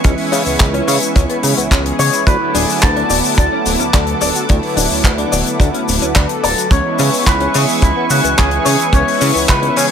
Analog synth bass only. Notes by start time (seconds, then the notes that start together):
0.04 C#2
0.32 C#3
0.46 C#2
0.60 C#2
0.88 C#3
1.16 C#2
1.43 C#3
1.57 C#2
1.71 C#2
1.99 C#3
2.27 D2
2.54 D1
2.83 D2
3.10 D1
3.38 D2
3.66 D1
3.80 D2
3.94 D2
4.21 D1
4.50 D2
4.77 D1
4.91 D2
5.04 D2
5.33 D1
5.60 D2
5.88 D1
6.02 D2
6.16 D2
6.44 D1
6.71 C#2
6.99 C#3
7.26 C#2
7.55 C#3
7.82 C#2
8.10 C#3
8.24 C#2
8.39 C#2
8.66 C#3
8.93 C#2
9.21 C#3
9.35 C#2
9.49 C#2
9.77 C#3